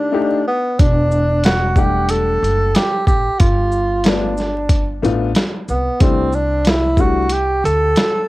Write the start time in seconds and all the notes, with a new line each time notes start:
Already playing: A3 D4
0.12 A3 D4 D#4 G4
0.47 B3
0.79 E1 D4, kick, closed hi-hat
1.11 shaker
1.44 F#4, snare, closed hi-hat
1.76 G3 A3 D4 G4 F#5, kick, shaker
2.09 A4, closed hi-hat
2.42 F#1, closed hi-hat, shaker
2.75 G4, snare, closed hi-hat
3.07 A1 G4, kick, shaker
3.40 G1 F4, kick, closed hi-hat
3.72 shaker
4.04 A3 B3 D4 F4, snare, closed hi-hat
4.37 snare, shaker
4.69 kick, closed hi-hat
5.02 A1 A3 B3 D4 F4, closed hi-hat, shaker
5.35 snare, closed hi-hat
5.68 C2 B3, shaker
6.00 C2 G3 A3 C4 D4 E4, kick, closed hi-hat
6.32 D4, shaker
6.65 snare, closed hi-hat
6.69 E4
6.97 G3 A3 D4 E4 F#4, kick, shaker
7.29 G4, closed hi-hat
7.64 D2 A4, closed hi-hat, shaker
7.96 snare, closed hi-hat